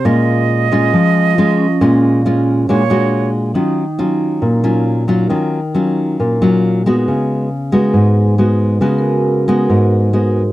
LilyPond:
<<
  \new Staff \with { instrumentName = "Flute" } { \time 4/4 \key ees \minor \tempo 4 = 137 ees''1~ | ees''4. r8 cis''4. r8 | r1 | r1 |
r1 | r1 | }
  \new Staff \with { instrumentName = "Vibraphone" } { \time 4/4 \key ees \minor r2. r8 des'8~ | des'8 r2. r8 | ees'4 r2. | r1 |
r1 | ges'16 bes'4 r2 r8. | }
  \new Staff \with { instrumentName = "Nylon-string guitar" } { \time 4/4 \key ees \minor << { <aes des' f'>4. <aes des' f'>4. <aes des' f'>8 r8 | <aes des' f'>4 <aes des' f'>4 <aes d' fis'>8 <aes d' fis'>4. | <ges des' f'>8 r8 <ges des' f'>4. <ges des' f'>4 <ges des' f'>8 | <ges des' f'>8 r8 <ges des' f'>4. <ges des' f'>4 <aes ces' ges'>8~ |
<aes ces' ges'>4 r8 <aes ces' ges'>4. <aes ces' ges'>4 | <aes ces' ges'>4. <aes ces' ges'>4. <aes ces' ges'>8 r8 | } \\ { bes,2 f2 | bes,2 bes,2 | ees2 bes,2 | ees2 bes,2 |
des2 aes,2 | des2 aes,2 | } >> }
>>